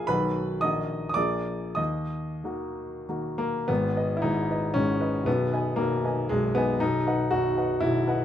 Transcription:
Already playing: A#1 F3 A#3 G#4 D5 F5 G#5 D6 F6
0.07 B1 D#3 F#3 F#4 B4 B5
0.61 A#1 D#3 A#3 F#4 D#5 D#6
1.09 D#6
1.14 A#1 F3 A#3 G#4 D5 D6
1.75 D#2 D#5 D#6
2.44 D#3 A#3 F#4
3.09 D#3 A#3 F#4
3.38 A#3
3.68 G#1 G#2 B3
3.97 B4 D#5
4.17 E4
4.22 G#1 G#2 D#4
4.51 B4 D#5
4.74 G#1 G#2 C#4
5.00 B4 D#5
5.24 B0 B1 B3
5.53 B4 D#5 G#5
5.76 B0 B1 A#3
6.05 B4 D#5 G#5
6.29 B0 B1 G#3
6.55 B3 B4 D#5 G#5
6.80 B0 B1 D#4
7.07 B4 D#5 F#5
7.31 B0 B1 F#4
7.57 B4 D#5 F#5
7.80 B0 B1 E4
8.07 B4 D#5 F#5

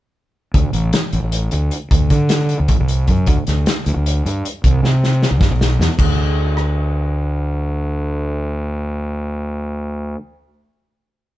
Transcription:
0.54 D2, kick, closed hi-hat
0.73 A1, closed hi-hat
0.93 snare, closed hi-hat
1.13 A1, closed hi-hat
1.22 A1
1.32 closed hi-hat
1.51 D2, closed hi-hat
1.71 closed hi-hat
1.91 D2, kick, closed hi-hat
2.10 D3, kick, closed hi-hat
2.29 snare, closed hi-hat
2.49 closed hi-hat
2.60 D2
2.68 A1, kick, closed hi-hat
2.80 C2
2.88 closed hi-hat
3.07 F#2, kick, closed hi-hat
3.26 D2, kick, closed hi-hat
3.47 D2, snare, closed hi-hat
3.66 snare, closed hi-hat
3.86 D2, closed hi-hat
3.96 D2
4.06 closed hi-hat
4.25 G2, closed hi-hat
4.45 closed hi-hat
4.64 C2, kick, closed hi-hat
4.83 C3, snare
5.04 snare
5.23 snare
5.31 C2
5.41 G2, kick, snare
5.51 B1
5.61 snare
5.79 E2, snare
5.99 D2, kick, crash
6.57 cross-stick

